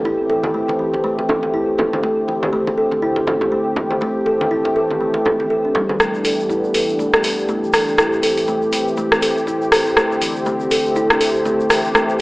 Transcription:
0.00 1.99 E3 medium
0.05 3.98 A3 medium
0.05 2.01 C4 medium
0.05 0.18 E4 medium
0.05 5.96 G4 medium
0.05 muted conga soft
0.30 0.37 A4 medium
0.30 muted conga soft
0.43 high conga loud
0.54 0.62 A3 medium
0.68 muted conga soft
0.68 high conga medium
0.79 0.92 E3 medium
0.94 muted conga soft
0.94 high conga medium
1.04 1.17 A3 medium
1.19 muted conga soft
1.29 1.42 A4 medium
1.29 low conga medium
1.43 muted conga soft
1.43 high conga medium
1.54 1.67 E4 medium
1.78 1.86 A4 medium
1.78 muted conga soft
1.78 low conga medium
1.93 high conga medium
2.03 3.99 D3 medium
2.03 2.11 A3 medium
2.03 5.96 C4 medium
2.03 muted conga medium
2.28 2.41 E3 medium
2.28 muted conga soft
2.43 high conga medium
2.53 2.66 A3 medium
2.67 muted conga soft
2.67 high conga medium
2.78 2.91 A4 medium
2.91 muted conga soft
2.91 high conga medium
3.02 3.15 E4 medium
3.16 muted conga medium
3.27 3.35 A4 medium
3.27 high conga medium
3.27 low conga medium
3.41 muted conga soft
3.41 low conga medium
3.52 3.60 A3 medium
3.76 3.90 E3 medium
3.76 muted conga soft
3.76 low conga loud
3.91 high conga medium
4.01 5.98 E3 medium
4.01 4.14 A3 loud
4.01 5.98 A3 medium
4.01 muted conga medium
4.26 4.40 A4 medium
4.26 muted conga soft
4.41 high conga medium
4.51 4.64 E4 medium
4.65 muted conga soft
4.65 high conga medium
4.76 4.84 A4 medium
4.91 muted conga soft
4.91 high conga medium
5.01 5.08 A3 medium
5.14 muted conga medium
5.25 5.39 A4 medium
5.25 low conga loud
5.40 5.49 C4 medium
5.40 muted conga soft
5.40 high conga medium
5.50 5.64 A4 medium
5.65 5.74 D4 medium
5.75 5.88 G3 medium
5.75 muted conga soft
5.75 low conga loud
5.89 high conga medium
5.99 6.35 G1 loud
5.99 7.96 E3 medium
5.99 6.13 A3 loud
5.99 7.96 B3 medium
5.99 7.96 D4 medium
5.99 12.21 G4 medium
5.99 cross-stick medium
5.99 mid tom soft
5.99 shaker medium
6.14 shaker soft
6.25 6.38 A4 medium
6.25 open hi-hat medium
6.25 shaker medium
6.39 6.48 G1 medium
6.39 shaker soft
6.49 6.62 E4 medium
6.49 mid tom soft
6.49 shaker soft
6.64 shaker soft
6.74 7.10 G2 medium
6.74 6.82 A4 medium
6.74 open hi-hat medium
6.74 shaker medium
6.89 shaker soft
6.99 7.07 A3 medium
6.99 mid tom soft
6.99 shaker soft
7.13 7.33 G1 medium
7.13 cross-stick medium
7.13 shaker soft
7.24 7.37 E3 medium
7.24 open hi-hat medium
7.24 shaker medium
7.38 7.58 G1 medium
7.38 shaker soft
7.48 7.62 A3 medium
7.48 mid tom soft
7.48 shaker medium
7.63 7.95 G1 medium
7.63 shaker soft
7.73 7.87 A4 medium
7.73 cross-stick medium
7.73 open hi-hat medium
7.73 shaker medium
7.88 shaker soft
7.98 8.33 A1 medium
7.98 9.94 E3 medium
7.98 12.21 A3 medium
7.98 12.21 C4 medium
7.98 8.11 E4 medium
7.98 cross-stick medium
7.98 mid tom medium
7.98 shaker medium
8.13 shaker soft
8.23 8.31 A4 medium
8.23 open hi-hat medium
8.23 shaker medium
8.37 8.46 A1 medium
8.37 open hi-hat soft
8.37 shaker soft
8.47 8.55 A3 medium
8.47 mid tom medium
8.47 shaker medium
8.62 shaker soft
8.72 9.08 A2 medium
8.72 8.85 E3 medium
8.72 open hi-hat medium
8.72 shaker medium
8.88 shaker soft
8.97 9.10 A3 loud
8.97 mid tom medium
8.97 shaker medium
9.12 9.32 A1 medium
9.12 cross-stick medium
9.12 shaker soft
9.22 9.36 A4 medium
9.22 open hi-hat medium
9.22 shaker loud
9.37 9.56 A1 medium
9.37 shaker soft
9.47 9.60 E4 medium
9.47 mid tom medium
9.47 shaker medium
9.61 9.94 A1 medium
9.61 shaker soft
9.72 9.80 A4 medium
9.72 cross-stick medium
9.72 open hi-hat medium
9.72 shaker medium
9.86 shaker soft
9.96 10.32 D2 loud
9.96 11.93 D3 medium
9.96 10.04 A3 medium
9.96 cross-stick medium
9.96 mid tom medium
9.96 shaker soft
10.12 shaker soft
10.21 10.34 E3 medium
10.21 open hi-hat medium
10.21 shaker loud
10.36 10.44 D2 medium
10.36 shaker soft
10.46 10.59 A3 loud
10.46 mid tom medium
10.46 shaker medium
10.60 shaker soft
10.71 11.06 D1 medium
10.71 10.85 A4 medium
10.71 open hi-hat medium
10.71 shaker loud
10.86 shaker soft
10.96 11.09 E4 medium
10.96 mid tom medium
10.96 shaker medium
11.10 11.30 D2 medium
11.10 cross-stick medium
11.10 shaker soft
11.20 11.28 A4 medium
11.20 open hi-hat medium
11.20 shaker medium
11.35 11.55 D2 medium
11.35 shaker soft
11.45 11.53 A3 medium
11.45 mid tom medium
11.45 shaker medium
11.60 11.92 D2 medium
11.60 shaker soft
11.70 11.83 E3 medium
11.70 cross-stick medium
11.70 open hi-hat medium
11.70 shaker loud
11.85 shaker soft
11.95 12.21 A1 loud
11.95 12.21 E3 medium
11.95 12.08 A3 loud
11.95 cross-stick medium
11.95 mid tom medium
11.95 shaker medium
12.09 shaker soft

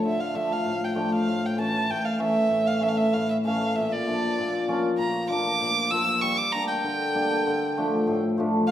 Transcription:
0.05 0.72 D3 medium
0.05 0.22 E5 medium
0.20 0.37 F5 medium
0.34 0.94 F3 medium
0.34 0.51 A3 medium
0.34 0.51 D4 medium
0.34 0.54 E5 medium
0.52 0.86 F5 medium
0.65 1.25 A2 medium
0.84 1.14 G5 medium
0.95 1.34 F3 medium
0.95 1.12 A3 medium
0.95 1.12 D4 medium
1.15 1.47 F5 medium
1.26 1.89 A2 medium
1.46 1.61 G5 medium
1.57 2.18 E3 medium
1.57 1.74 A3 soft
1.57 1.74 C#4 medium
1.61 1.92 A5 medium
1.90 2.48 A2 medium
1.90 2.07 G5 medium
2.05 2.22 F5 medium
2.19 2.79 E3 medium
2.19 2.36 A3 medium
2.19 2.36 C#4 medium
2.19 2.68 E5 medium
2.49 3.12 A2 medium
2.67 2.85 F5 medium
2.81 3.43 E3 medium
2.81 2.98 A3 medium
2.81 2.98 C#4 medium
2.81 2.90 E5 medium
2.89 2.99 F5 medium
2.98 3.15 E5 medium
3.13 3.81 A2 medium
3.13 3.29 F5 medium
3.30 3.37 E5 medium
3.45 3.81 E3 medium
3.45 3.61 A3 medium
3.45 3.62 C#4 medium
3.45 3.77 F5 medium
3.76 4.37 A#2 medium
3.76 3.94 E5 medium
3.92 4.84 D5 medium
4.07 4.67 F3 medium
4.07 4.22 A#3 medium
4.07 4.23 D4 medium
4.38 4.97 A#2 medium
4.68 5.28 F3 medium
4.68 4.84 A#3 medium
4.68 4.84 C#4 medium
4.99 5.59 A#2 medium
4.99 5.28 A#5 medium
5.29 5.89 F3 medium
5.29 5.45 A#3 medium
5.29 5.46 D4 medium
5.29 5.92 D6 loud
5.61 6.28 A#2 medium
5.90 6.28 F3 medium
5.90 6.07 A#3 medium
5.90 6.07 F4 medium
5.90 6.23 E6 loud
6.21 6.53 G3 medium
6.21 6.39 C#6 loud
6.38 6.54 D6 medium
6.52 6.89 G3 medium
6.52 6.69 A#3 soft
6.52 6.69 D4 medium
6.52 6.67 A#5 loud
6.68 8.18 G5 medium
6.84 7.46 D3 medium
7.14 7.51 G3 medium
7.14 7.30 A#3 medium
7.14 7.30 D4 medium
7.47 8.12 D3 medium
7.77 8.37 F3 medium
7.77 7.92 A3 medium
7.77 7.93 D4 medium
8.07 8.71 A2 medium
8.38 8.71 F3 medium
8.38 8.54 A3 medium
8.38 8.54 D4 medium
8.67 8.71 F5 medium

